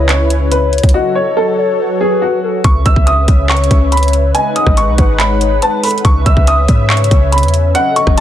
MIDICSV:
0, 0, Header, 1, 6, 480
1, 0, Start_track
1, 0, Key_signature, 4, "minor"
1, 0, Tempo, 425532
1, 1061, Time_signature, 4, 2, 24, 8
1, 9253, End_track
2, 0, Start_track
2, 0, Title_t, "Grand piano"
2, 0, Program_c, 0, 0
2, 100, Note_on_c, 0, 73, 78
2, 552, Note_off_c, 0, 73, 0
2, 581, Note_on_c, 0, 71, 82
2, 796, Note_off_c, 0, 71, 0
2, 1062, Note_on_c, 0, 66, 89
2, 1276, Note_off_c, 0, 66, 0
2, 1302, Note_on_c, 0, 73, 78
2, 1516, Note_off_c, 0, 73, 0
2, 1543, Note_on_c, 0, 69, 90
2, 2219, Note_off_c, 0, 69, 0
2, 2263, Note_on_c, 0, 68, 86
2, 2477, Note_off_c, 0, 68, 0
2, 2502, Note_on_c, 0, 66, 81
2, 2953, Note_off_c, 0, 66, 0
2, 2983, Note_on_c, 0, 85, 93
2, 3197, Note_off_c, 0, 85, 0
2, 3223, Note_on_c, 0, 88, 88
2, 3437, Note_off_c, 0, 88, 0
2, 3459, Note_on_c, 0, 87, 87
2, 3912, Note_off_c, 0, 87, 0
2, 3942, Note_on_c, 0, 85, 104
2, 4393, Note_off_c, 0, 85, 0
2, 4423, Note_on_c, 0, 83, 91
2, 4637, Note_off_c, 0, 83, 0
2, 4901, Note_on_c, 0, 80, 81
2, 5116, Note_off_c, 0, 80, 0
2, 5141, Note_on_c, 0, 87, 86
2, 5356, Note_off_c, 0, 87, 0
2, 5384, Note_on_c, 0, 85, 85
2, 5834, Note_off_c, 0, 85, 0
2, 5859, Note_on_c, 0, 83, 97
2, 6312, Note_off_c, 0, 83, 0
2, 6344, Note_on_c, 0, 81, 82
2, 6557, Note_off_c, 0, 81, 0
2, 6582, Note_on_c, 0, 83, 82
2, 6796, Note_off_c, 0, 83, 0
2, 6821, Note_on_c, 0, 85, 98
2, 7036, Note_off_c, 0, 85, 0
2, 7061, Note_on_c, 0, 88, 77
2, 7276, Note_off_c, 0, 88, 0
2, 7305, Note_on_c, 0, 87, 88
2, 7755, Note_off_c, 0, 87, 0
2, 7780, Note_on_c, 0, 85, 77
2, 8232, Note_off_c, 0, 85, 0
2, 8260, Note_on_c, 0, 83, 86
2, 8476, Note_off_c, 0, 83, 0
2, 8739, Note_on_c, 0, 78, 92
2, 8955, Note_off_c, 0, 78, 0
2, 8981, Note_on_c, 0, 85, 85
2, 9196, Note_off_c, 0, 85, 0
2, 9253, End_track
3, 0, Start_track
3, 0, Title_t, "Soft synth lead"
3, 0, Program_c, 1, 80
3, 0, Note_on_c, 1, 73, 81
3, 1018, Note_off_c, 1, 73, 0
3, 1058, Note_on_c, 1, 75, 105
3, 1737, Note_off_c, 1, 75, 0
3, 1781, Note_on_c, 1, 73, 85
3, 2009, Note_off_c, 1, 73, 0
3, 2025, Note_on_c, 1, 71, 92
3, 2701, Note_off_c, 1, 71, 0
3, 2746, Note_on_c, 1, 69, 77
3, 2972, Note_off_c, 1, 69, 0
3, 3220, Note_on_c, 1, 76, 78
3, 3672, Note_off_c, 1, 76, 0
3, 3703, Note_on_c, 1, 73, 90
3, 4857, Note_off_c, 1, 73, 0
3, 4898, Note_on_c, 1, 75, 102
3, 5577, Note_off_c, 1, 75, 0
3, 5619, Note_on_c, 1, 71, 81
3, 5849, Note_off_c, 1, 71, 0
3, 5860, Note_on_c, 1, 73, 102
3, 6312, Note_off_c, 1, 73, 0
3, 6343, Note_on_c, 1, 71, 81
3, 6571, Note_off_c, 1, 71, 0
3, 6581, Note_on_c, 1, 69, 83
3, 6809, Note_off_c, 1, 69, 0
3, 7063, Note_on_c, 1, 76, 87
3, 7514, Note_off_c, 1, 76, 0
3, 7544, Note_on_c, 1, 73, 85
3, 8698, Note_off_c, 1, 73, 0
3, 8739, Note_on_c, 1, 75, 108
3, 9253, Note_off_c, 1, 75, 0
3, 9253, End_track
4, 0, Start_track
4, 0, Title_t, "Analog synth pad"
4, 0, Program_c, 2, 89
4, 0, Note_on_c, 2, 49, 85
4, 0, Note_on_c, 2, 61, 78
4, 0, Note_on_c, 2, 64, 78
4, 0, Note_on_c, 2, 71, 95
4, 1042, Note_off_c, 2, 49, 0
4, 1042, Note_off_c, 2, 61, 0
4, 1042, Note_off_c, 2, 64, 0
4, 1042, Note_off_c, 2, 71, 0
4, 1061, Note_on_c, 2, 54, 82
4, 1061, Note_on_c, 2, 66, 75
4, 1061, Note_on_c, 2, 69, 75
4, 1061, Note_on_c, 2, 73, 90
4, 2962, Note_off_c, 2, 54, 0
4, 2962, Note_off_c, 2, 66, 0
4, 2962, Note_off_c, 2, 69, 0
4, 2962, Note_off_c, 2, 73, 0
4, 2981, Note_on_c, 2, 71, 76
4, 2982, Note_on_c, 2, 49, 85
4, 2982, Note_on_c, 2, 61, 76
4, 2982, Note_on_c, 2, 76, 95
4, 4883, Note_off_c, 2, 49, 0
4, 4883, Note_off_c, 2, 61, 0
4, 4883, Note_off_c, 2, 76, 0
4, 4902, Note_on_c, 2, 56, 85
4, 4902, Note_on_c, 2, 78, 94
4, 4903, Note_on_c, 2, 63, 77
4, 6803, Note_off_c, 2, 56, 0
4, 6803, Note_off_c, 2, 63, 0
4, 6803, Note_off_c, 2, 78, 0
4, 6823, Note_on_c, 2, 49, 86
4, 6823, Note_on_c, 2, 61, 77
4, 6823, Note_on_c, 2, 76, 95
4, 8696, Note_off_c, 2, 71, 0
4, 8723, Note_off_c, 2, 49, 0
4, 8723, Note_off_c, 2, 76, 0
4, 8741, Note_on_c, 2, 54, 85
4, 8742, Note_on_c, 2, 69, 78
4, 8742, Note_on_c, 2, 78, 93
4, 9253, Note_off_c, 2, 54, 0
4, 9253, Note_off_c, 2, 61, 0
4, 9253, Note_off_c, 2, 69, 0
4, 9253, Note_off_c, 2, 78, 0
4, 9253, End_track
5, 0, Start_track
5, 0, Title_t, "808-style bass"
5, 0, Program_c, 3, 38
5, 0, Note_on_c, 3, 37, 106
5, 897, Note_off_c, 3, 37, 0
5, 942, Note_on_c, 3, 37, 101
5, 1057, Note_off_c, 3, 37, 0
5, 2982, Note_on_c, 3, 37, 115
5, 3213, Note_off_c, 3, 37, 0
5, 3223, Note_on_c, 3, 37, 105
5, 3338, Note_off_c, 3, 37, 0
5, 3343, Note_on_c, 3, 37, 104
5, 3688, Note_off_c, 3, 37, 0
5, 3701, Note_on_c, 3, 37, 104
5, 4162, Note_off_c, 3, 37, 0
5, 4183, Note_on_c, 3, 37, 107
5, 4874, Note_off_c, 3, 37, 0
5, 5263, Note_on_c, 3, 32, 112
5, 5502, Note_on_c, 3, 35, 101
5, 5519, Note_off_c, 3, 32, 0
5, 5616, Note_off_c, 3, 35, 0
5, 5622, Note_on_c, 3, 32, 106
5, 6313, Note_off_c, 3, 32, 0
5, 6822, Note_on_c, 3, 37, 114
5, 7052, Note_off_c, 3, 37, 0
5, 7062, Note_on_c, 3, 37, 104
5, 7177, Note_off_c, 3, 37, 0
5, 7183, Note_on_c, 3, 37, 107
5, 7528, Note_off_c, 3, 37, 0
5, 7541, Note_on_c, 3, 44, 105
5, 8002, Note_off_c, 3, 44, 0
5, 8023, Note_on_c, 3, 37, 110
5, 8382, Note_on_c, 3, 40, 99
5, 8399, Note_off_c, 3, 37, 0
5, 8724, Note_off_c, 3, 40, 0
5, 9102, Note_on_c, 3, 28, 104
5, 9253, Note_off_c, 3, 28, 0
5, 9253, End_track
6, 0, Start_track
6, 0, Title_t, "Drums"
6, 102, Note_on_c, 9, 39, 118
6, 102, Note_on_c, 9, 42, 74
6, 214, Note_off_c, 9, 39, 0
6, 215, Note_off_c, 9, 42, 0
6, 343, Note_on_c, 9, 42, 72
6, 455, Note_off_c, 9, 42, 0
6, 581, Note_on_c, 9, 42, 85
6, 694, Note_off_c, 9, 42, 0
6, 822, Note_on_c, 9, 42, 50
6, 882, Note_off_c, 9, 42, 0
6, 882, Note_on_c, 9, 42, 63
6, 942, Note_off_c, 9, 42, 0
6, 942, Note_on_c, 9, 36, 90
6, 942, Note_on_c, 9, 42, 72
6, 1002, Note_off_c, 9, 42, 0
6, 1002, Note_on_c, 9, 42, 83
6, 1055, Note_off_c, 9, 36, 0
6, 1115, Note_off_c, 9, 42, 0
6, 2982, Note_on_c, 9, 36, 120
6, 2982, Note_on_c, 9, 42, 88
6, 3095, Note_off_c, 9, 36, 0
6, 3095, Note_off_c, 9, 42, 0
6, 3222, Note_on_c, 9, 42, 74
6, 3223, Note_on_c, 9, 36, 102
6, 3335, Note_off_c, 9, 36, 0
6, 3335, Note_off_c, 9, 42, 0
6, 3343, Note_on_c, 9, 36, 90
6, 3456, Note_off_c, 9, 36, 0
6, 3462, Note_on_c, 9, 42, 87
6, 3575, Note_off_c, 9, 42, 0
6, 3700, Note_on_c, 9, 42, 85
6, 3702, Note_on_c, 9, 36, 104
6, 3813, Note_off_c, 9, 42, 0
6, 3814, Note_off_c, 9, 36, 0
6, 3942, Note_on_c, 9, 39, 122
6, 3942, Note_on_c, 9, 42, 45
6, 4022, Note_off_c, 9, 42, 0
6, 4022, Note_on_c, 9, 42, 58
6, 4055, Note_off_c, 9, 39, 0
6, 4102, Note_off_c, 9, 42, 0
6, 4102, Note_on_c, 9, 42, 76
6, 4182, Note_off_c, 9, 42, 0
6, 4182, Note_on_c, 9, 42, 69
6, 4183, Note_on_c, 9, 36, 97
6, 4295, Note_off_c, 9, 42, 0
6, 4296, Note_off_c, 9, 36, 0
6, 4422, Note_on_c, 9, 42, 83
6, 4482, Note_off_c, 9, 42, 0
6, 4482, Note_on_c, 9, 42, 74
6, 4543, Note_off_c, 9, 42, 0
6, 4543, Note_on_c, 9, 42, 59
6, 4603, Note_off_c, 9, 42, 0
6, 4603, Note_on_c, 9, 42, 49
6, 4663, Note_off_c, 9, 42, 0
6, 4663, Note_on_c, 9, 42, 81
6, 4775, Note_off_c, 9, 42, 0
6, 4903, Note_on_c, 9, 42, 84
6, 5016, Note_off_c, 9, 42, 0
6, 5142, Note_on_c, 9, 42, 77
6, 5255, Note_off_c, 9, 42, 0
6, 5263, Note_on_c, 9, 36, 92
6, 5263, Note_on_c, 9, 37, 94
6, 5375, Note_off_c, 9, 37, 0
6, 5376, Note_off_c, 9, 36, 0
6, 5382, Note_on_c, 9, 42, 90
6, 5494, Note_off_c, 9, 42, 0
6, 5620, Note_on_c, 9, 42, 83
6, 5621, Note_on_c, 9, 36, 103
6, 5733, Note_off_c, 9, 42, 0
6, 5734, Note_off_c, 9, 36, 0
6, 5862, Note_on_c, 9, 39, 116
6, 5862, Note_on_c, 9, 42, 71
6, 5975, Note_off_c, 9, 39, 0
6, 5975, Note_off_c, 9, 42, 0
6, 6103, Note_on_c, 9, 42, 68
6, 6216, Note_off_c, 9, 42, 0
6, 6341, Note_on_c, 9, 42, 81
6, 6454, Note_off_c, 9, 42, 0
6, 6582, Note_on_c, 9, 42, 89
6, 6582, Note_on_c, 9, 46, 89
6, 6663, Note_off_c, 9, 42, 0
6, 6663, Note_on_c, 9, 42, 67
6, 6695, Note_off_c, 9, 46, 0
6, 6742, Note_off_c, 9, 42, 0
6, 6742, Note_on_c, 9, 42, 50
6, 6821, Note_off_c, 9, 42, 0
6, 6821, Note_on_c, 9, 42, 90
6, 6822, Note_on_c, 9, 36, 119
6, 6934, Note_off_c, 9, 42, 0
6, 6935, Note_off_c, 9, 36, 0
6, 7062, Note_on_c, 9, 36, 100
6, 7062, Note_on_c, 9, 42, 74
6, 7174, Note_off_c, 9, 42, 0
6, 7175, Note_off_c, 9, 36, 0
6, 7183, Note_on_c, 9, 36, 90
6, 7295, Note_off_c, 9, 36, 0
6, 7302, Note_on_c, 9, 42, 90
6, 7414, Note_off_c, 9, 42, 0
6, 7540, Note_on_c, 9, 42, 87
6, 7541, Note_on_c, 9, 36, 103
6, 7653, Note_off_c, 9, 42, 0
6, 7654, Note_off_c, 9, 36, 0
6, 7782, Note_on_c, 9, 39, 117
6, 7782, Note_on_c, 9, 42, 46
6, 7862, Note_off_c, 9, 42, 0
6, 7862, Note_on_c, 9, 42, 61
6, 7895, Note_off_c, 9, 39, 0
6, 7943, Note_off_c, 9, 42, 0
6, 7943, Note_on_c, 9, 42, 75
6, 8023, Note_off_c, 9, 42, 0
6, 8023, Note_on_c, 9, 36, 98
6, 8023, Note_on_c, 9, 42, 67
6, 8135, Note_off_c, 9, 42, 0
6, 8136, Note_off_c, 9, 36, 0
6, 8262, Note_on_c, 9, 42, 81
6, 8322, Note_off_c, 9, 42, 0
6, 8322, Note_on_c, 9, 42, 73
6, 8382, Note_off_c, 9, 42, 0
6, 8382, Note_on_c, 9, 42, 59
6, 8441, Note_off_c, 9, 42, 0
6, 8441, Note_on_c, 9, 42, 48
6, 8501, Note_off_c, 9, 42, 0
6, 8501, Note_on_c, 9, 42, 82
6, 8614, Note_off_c, 9, 42, 0
6, 8741, Note_on_c, 9, 42, 87
6, 8854, Note_off_c, 9, 42, 0
6, 8981, Note_on_c, 9, 42, 74
6, 9094, Note_off_c, 9, 42, 0
6, 9102, Note_on_c, 9, 36, 91
6, 9102, Note_on_c, 9, 37, 96
6, 9215, Note_off_c, 9, 36, 0
6, 9215, Note_off_c, 9, 37, 0
6, 9253, End_track
0, 0, End_of_file